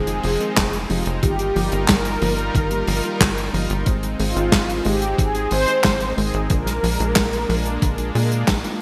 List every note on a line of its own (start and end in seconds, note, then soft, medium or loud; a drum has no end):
0.00 0.20 F1 medium
0.00 0.17 D#3 loud
0.00 1.20 F3 medium
0.00 1.20 G#3 medium
0.00 1.20 C4 medium
0.00 6.46 D#4 medium
0.00 0.86 G#4 loud
0.07 0.26 G#3 medium
0.07 0.26 C4 medium
0.07 0.26 D#4 medium
0.07 0.26 F4 medium
0.07 0.26 G#4 medium
0.07 closed hi-hat medium
0.23 0.39 F1 loud
0.23 0.55 F3 medium
0.23 open hi-hat medium
0.40 0.86 G#3 medium
0.40 0.86 C4 medium
0.40 0.86 D#4 medium
0.40 0.86 F4 medium
0.40 0.86 A#4 medium
0.40 closed hi-hat medium
0.56 0.86 F1 loud
0.56 0.72 G#3 loud
0.56 kick loud
0.56 snare loud
0.56 clap loud
0.56 closed hi-hat medium
0.73 closed hi-hat medium
0.90 1.05 F1 medium
0.90 1.21 F3 loud
0.90 1.19 G#3 medium
0.90 1.19 C4 medium
0.90 1.19 D#4 medium
0.90 1.19 F4 medium
0.90 1.04 F4 medium
0.90 1.19 G4 medium
0.90 open hi-hat medium
1.06 1.21 F1 loud
1.06 closed hi-hat medium
1.23 1.52 G1 loud
1.23 1.54 D#3 loud
1.23 3.84 G3 medium
1.23 1.68 G3 medium
1.23 1.68 A#3 medium
1.23 1.68 D#4 medium
1.23 1.68 F4 medium
1.23 3.84 F4 medium
1.23 1.68 G4 medium
1.23 1.91 G4 loud
1.23 3.84 A#4 loud
1.23 kick loud
1.23 closed hi-hat medium
1.39 closed hi-hat medium
1.56 1.70 G1 medium
1.56 1.71 F3 loud
1.56 open hi-hat medium
1.72 1.87 G1 loud
1.72 2.18 G3 medium
1.72 2.18 A#3 medium
1.72 2.18 D#4 medium
1.72 2.18 F4 medium
1.72 2.18 G4 medium
1.72 closed hi-hat medium
1.88 2.18 G1 medium
1.88 2.20 G3 loud
1.88 3.49 A#4 loud
1.88 kick loud
1.88 snare loud
1.88 clap medium
1.88 closed hi-hat medium
2.05 closed hi-hat medium
2.22 2.51 G1 loud
2.22 2.53 F3 loud
2.22 2.41 G3 medium
2.22 2.41 A#3 medium
2.22 2.41 D#4 medium
2.22 2.41 F4 medium
2.22 2.41 A#4 loud
2.22 open hi-hat medium
2.38 closed hi-hat medium
2.55 2.84 G1 medium
2.55 2.81 D#3 loud
2.55 kick loud
2.55 closed hi-hat medium
2.71 2.90 G3 medium
2.71 2.90 A#3 medium
2.71 2.90 D#4 medium
2.71 2.90 F4 medium
2.71 2.90 G4 medium
2.71 closed hi-hat medium
2.87 3.02 G1 loud
2.87 3.19 F3 medium
2.87 open hi-hat loud
3.04 3.49 G3 medium
3.04 3.49 A#3 medium
3.04 3.49 D#4 medium
3.04 3.49 F4 medium
3.04 3.49 A#4 medium
3.04 closed hi-hat medium
3.21 3.50 G1 loud
3.21 3.36 G3 loud
3.21 kick loud
3.21 snare loud
3.21 clap loud
3.21 closed hi-hat medium
3.38 closed hi-hat medium
3.54 3.68 G1 medium
3.54 3.85 F3 loud
3.54 3.83 G3 medium
3.54 3.82 A#3 medium
3.54 3.82 D#4 medium
3.54 3.82 F4 medium
3.54 3.83 G4 medium
3.54 open hi-hat medium
3.70 3.85 G1 loud
3.70 closed hi-hat medium
3.86 4.16 G#1 loud
3.86 4.18 D#3 loud
3.86 4.32 G#3 medium
3.86 6.48 G#3 medium
3.86 4.32 C4 medium
3.86 6.48 C4 medium
3.86 4.32 D#4 medium
3.86 4.32 G#4 medium
3.86 4.32 C5 medium
3.86 kick loud
3.86 closed hi-hat medium
4.03 closed hi-hat medium
4.19 4.34 G#1 medium
4.19 4.35 G#3 loud
4.19 4.87 F4 loud
4.19 open hi-hat medium
4.36 4.51 G#1 loud
4.36 4.81 G#3 medium
4.36 4.81 C4 medium
4.36 4.81 D#4 medium
4.36 4.81 G#4 medium
4.36 4.81 C5 medium
4.36 closed hi-hat medium
4.52 4.82 G#1 medium
4.52 4.84 C4 medium
4.52 kick loud
4.52 snare loud
4.52 clap loud
4.52 closed hi-hat medium
4.70 closed hi-hat medium
4.85 5.15 G#1 loud
4.85 5.04 G#3 medium
4.85 5.11 G#3 loud
4.85 5.04 C4 medium
4.85 5.04 D#4 medium
4.85 5.16 G4 loud
4.85 5.04 G#4 medium
4.85 5.04 D#5 loud
4.85 open hi-hat medium
5.02 closed hi-hat medium
5.18 5.48 G#1 medium
5.18 5.44 D#3 loud
5.18 5.52 G#4 loud
5.18 kick loud
5.18 closed hi-hat medium
5.35 5.54 G#3 medium
5.35 5.54 C4 medium
5.35 5.54 D#4 medium
5.35 5.54 G#4 medium
5.35 5.54 C5 medium
5.35 closed hi-hat medium
5.51 5.66 G#1 loud
5.51 5.83 G#3 medium
5.51 6.13 C5 loud
5.51 open hi-hat loud
5.68 6.13 G#3 medium
5.68 6.13 C4 medium
5.68 6.13 D#4 medium
5.68 6.13 G#4 medium
5.68 6.13 D#5 medium
5.68 closed hi-hat medium
5.84 6.14 G#1 loud
5.84 6.00 C4 loud
5.84 kick loud
5.84 snare loud
5.84 clap loud
5.84 closed hi-hat medium
6.01 closed hi-hat medium
6.17 6.32 G#1 medium
6.17 6.48 G#3 loud
6.17 6.46 G#3 medium
6.17 6.46 C4 medium
6.17 6.46 D#4 medium
6.17 6.46 G#4 medium
6.17 6.51 G#4 loud
6.17 6.46 A#4 medium
6.17 open hi-hat medium
6.34 6.49 G#1 loud
6.34 closed hi-hat medium
6.50 6.80 A#1 loud
6.50 6.81 D3 loud
6.50 6.96 G#3 medium
6.50 8.82 G#3 medium
6.50 6.96 A#3 medium
6.50 8.82 A#3 medium
6.50 6.96 D4 medium
6.50 8.82 D4 medium
6.50 6.96 F4 medium
6.50 6.96 G#4 medium
6.50 8.44 A#4 loud
6.50 kick loud
6.50 closed hi-hat medium
6.66 snare soft
6.66 closed hi-hat medium
6.83 6.98 A#1 medium
6.83 6.99 F3 loud
6.83 open hi-hat medium
7.00 7.14 A#1 loud
7.00 7.45 G#3 medium
7.00 7.45 A#3 medium
7.00 7.45 D4 medium
7.00 7.45 F4 medium
7.00 7.45 G#4 medium
7.00 closed hi-hat medium
7.16 7.46 A#1 medium
7.16 7.47 G#3 loud
7.16 kick loud
7.16 snare loud
7.16 clap loud
7.16 closed hi-hat medium
7.33 closed hi-hat medium
7.49 7.79 A#1 loud
7.49 7.80 F3 loud
7.49 7.68 G#3 medium
7.49 7.68 A#3 medium
7.49 7.68 D4 medium
7.49 7.68 F4 medium
7.49 7.68 A#4 loud
7.49 open hi-hat medium
7.65 closed hi-hat medium
7.82 8.12 A#1 medium
7.82 8.08 D3 loud
7.82 kick loud
7.82 closed hi-hat medium
7.98 8.12 G#3 medium
7.98 8.12 A#3 medium
7.98 8.12 D4 medium
7.98 8.12 F4 medium
7.98 8.12 G#4 medium
7.98 closed hi-hat medium
8.15 8.44 A#2 medium
8.15 8.60 G#3 medium
8.15 8.41 G#3 loud
8.15 8.60 A#3 medium
8.15 8.60 D4 medium
8.15 8.61 F4 medium
8.15 8.60 G#4 loud
8.15 open hi-hat medium
8.32 closed hi-hat medium
8.48 8.63 A#1 loud
8.48 8.74 G#3 medium
8.48 kick loud
8.48 snare loud
8.48 clap loud
8.48 closed hi-hat medium
8.64 8.82 G#3 loud
8.64 8.82 A#3 medium
8.64 8.82 D4 medium
8.64 8.82 F4 medium
8.64 8.82 A#4 loud
8.64 closed hi-hat medium